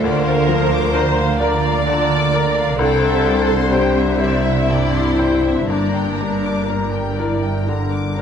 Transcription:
Already playing: D2 D3 F4 C5
0.00 D2 A#3 A#4 D5
0.26 F5
0.48 F3 A#5
0.71 D6
0.93 D4 A#4 C5 A#5
1.17 F5
1.40 D4 A#4 D5
1.66 F5
1.87 D3 A4 A#5
2.13 D6
2.33 D4 A#4 A#5
2.59 F5
2.77 C2 C3 C4 D4 A4 C5
2.81 D5 G5
3.04 E5
3.26 G3 G5
3.50 C6
3.71 D4 G4 C5 G5
3.97 E5
4.20 D4 E4 C5 D5 E5
4.44 E5
4.68 G2 D5 G5
4.93 C6
5.16 D4 C5 G5
5.43 E5
5.68 G1 G2 A#3 D4 A#4 D5 A#5
5.94 G5
6.18 G3 A#5
6.44 D6
6.68 D4 A#4 A#5
6.92 G5
7.18 D4 E4 A#4 D5
7.43 G5
7.68 D3 D4 A#5
7.93 D6
8.17 C4 A#5

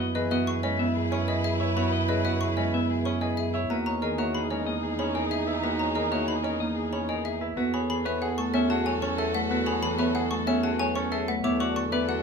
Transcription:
Already playing: F#2 G#3 B3 E4 B4
0.00 D#5
0.15 E3 G#4 B4 D#5
0.31 B3 F#4 D#5 E5
0.47 G#4 C#6
0.63 G#3 C#4 B4 D#5
0.79 B3 E5
0.96 G#4
1.12 C#4 D#5 C#6
1.28 G#4 B4 D#5
1.44 G#4 E5
1.60 E4 C#5
1.76 B3 F#4 C#5 B5
1.92 D#5
2.08 C#3 G#4 B4 D#5
2.25 B3 F#4 D#5 E5
2.41 G#4 C#6
2.57 G#3 C#4 B4 D#5
2.73 B3 E5
2.90 G#4
3.05 C#4 D#5 C#6
3.21 G#4 B4 D#5
3.37 G#4 E5
3.54 E4 C#5
3.70 E2 A#3 D#4 F#4 G#4 B4 A#5
3.86 C#5 A#5
4.02 D#3 G#4 A#4 D#5
4.18 A#3 F#4 C#5 E5
4.35 G#4 B5
4.51 G#3 C#4 A#4 D#5
4.66 A#3 D#5
4.83 G#4
4.99 C#4 C#5 B5
5.15 G#4 A#4 D#5
5.31 G#4 E5
5.47 E4 B4
5.63 A#3 F#4 B4 A#5
5.79 C#5 A#5
5.95 D#3 G#4 A#4 D#5
6.12 A#3 F#4 C#5 E5
6.28 G#4 B5
6.43 C#4 A#4 D#5
6.60 A#3 D#5
6.76 G#4
6.93 C#4 C#5 B5
7.09 G#4 A#4 D#5
7.25 G#4 E5
7.41 E4 B4
7.57 E2 B3 F#4 A4 B4
7.74 G#4 C#5 B5
7.89 E3 G#4 B5
8.05 B3 B4 C#5 E5
8.22 G#4 F#5
8.38 A3 A4 C#6
8.54 B3 C#4 E5
8.70 F#4 G#4 A5
8.86 F#3 C#5 G#5
9.02 C#4 A4 C#6
9.18 G#4 A4 E5
9.34 A3 B4 F#5
9.50 B3 F#4 B4
9.66 G#4 C#5 B5
9.82 E3 G#4 B5
9.99 B3 B4 C#5 E5
10.15 G#4 F#5
10.31 A3 A4 C#6
10.47 B3 C#4 E5
10.63 F#4 G#4 A5
10.79 F#3 C#5 G#5
10.96 C#4 A4 C#6
11.12 G#4 A4 E5
11.28 A3 B4 F#5
11.44 E2 B3 D4 E4 A4 C#5 D6
11.60 F#4 D5 C#6
11.76 D3 A4 C#6
11.92 B3 B4 D5 E5
12.08 F#4 A4 F#5

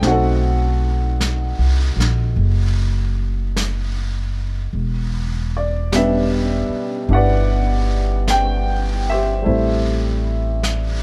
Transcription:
0.01 B1 A3 C4 D#4, brush sweep, snare
0.07 F#4 F#5
0.11 A4 D#5
1.21 brush sweep, snare, hi-hat pedal
1.59 C2
1.96 A#1, snare
2.36 F#1, brush sweep
3.56 brush sweep, snare, hi-hat pedal
4.73 E1, brush sweep
5.57 D5
5.92 B2 G3 D4 G4 B4 E5, brush sweep, snare, hi-hat pedal
6.69 muted upright bass stroke
7.09 G1 D4 E4 G4, brush sweep
7.13 B4 D5 F#5
8.28 G5, brush sweep, snare, hi-hat pedal
9.10 G4 C5 E5
9.42 A1 G3 A3 C4 E4, brush sweep
10.63 brush sweep, snare, hi-hat pedal

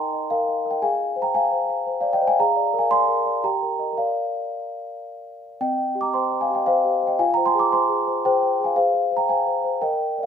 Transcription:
Already playing: D#4 A#4 D#5 G5 G#5 A#5 C6
0.13 D#5
0.30 A#4 F5 G5
0.48 D#5
0.65 A#4
0.71 D#5 G5
0.82 G#4 F5 G#5
0.99 F5
1.16 C5
1.22 G5 A#5
1.34 F5 G#5
1.52 C5
1.69 F5
1.87 C5
2.01 D5 F5
2.13 D#5 G5
2.21 C5
2.28 F5 G#5
2.40 G#4 F5 A#5
2.56 D5
2.73 A#4
2.79 F5 G#5
2.91 D5 G#5 C6
3.08 A#4
3.26 D5
3.44 G4 G5 A#5
3.62 A#4
3.79 A#4 D#5
3.93 A#4
3.98 D5 F5
5.61 C4 D#5 G5
5.78 D#5
5.95 G4
6.01 A#5 D6
6.14 C5 G5 C6
6.32 D#5
6.41 F5 G#5
6.50 G4
6.55 D#5 G5
6.66 C5 D#5 F5
6.85 G4
7.02 C5
7.07 D#5 G5
7.19 F4 F5 G#5
7.34 C5 G5 A#5
7.46 G#5 C6
7.55 G#4
7.59 A#5 D6
7.72 C5 G#5 C6
7.89 G#4
8.07 C5
8.25 G#4 C5 G5
8.42 C5
8.60 G#4
8.64 F5 G#5
8.76 G#4 C5 F5
8.93 C5
9.12 C5
9.17 G5 A#5
9.29 C5 F5 G#5
9.47 C5
9.64 C5
9.82 A#4 D#5 G5
10.00 A#4
10.18 A#4 D5

